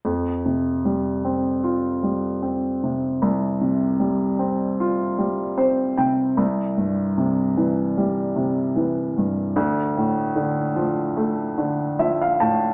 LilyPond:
<<
  \new Staff \with { instrumentName = "Grand piano" } { \time 4/4 \key f \major \tempo 4 = 75 r1 | r2. c''8 g''8 | r1 | r2. e''16 f''16 a''8 | }
  \new Staff \with { instrumentName = "Grand piano" } { \clef bass \time 4/4 \key f \major f,8 c8 g8 c'8 f'8 g8 c'8 c8 | c,8 c8 g8 c'8 f'8 g8 c'8 c8 | c,8 g,8 c8 e8 g8 c8 e8 g,8 | d,8 a,8 d8 f8 a8 d8 f8 a,8 | }
>>